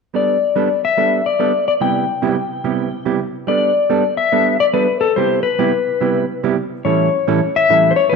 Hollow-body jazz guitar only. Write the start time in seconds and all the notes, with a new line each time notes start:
0.14 G3 B3 D4 A4
0.56 G3 B3 D4 A4
0.97 G3 B3 D4 A4
1.39 G3 B3 D4 A4
1.81 C3 G3 B3 E4 G4
2.22 C3 G3 B3 E4 G4
2.64 C3 G3 B3 E4 G4
3.05 C3 G3 B3 E4 G4
3.47 G3 B3 D4 A4
3.90 G3 B3 D4 A4
4.32 G3 B3 D4 A4
4.73 G3 B3 D4 A4
5.17 C3 G3 B3 E4 G4
5.59 C3 G3 B3 E4 G4
6.01 C3 G3 B3 E4 G4
6.43 C3 G3 B3 E4 G4
6.85 A2 E3 G3 C#4 E4 A4
7.27 A2 E3 G3 C#4 E4 A4
7.69 A2 E3 G3 C#4 E4 A4
8.13 A2 E3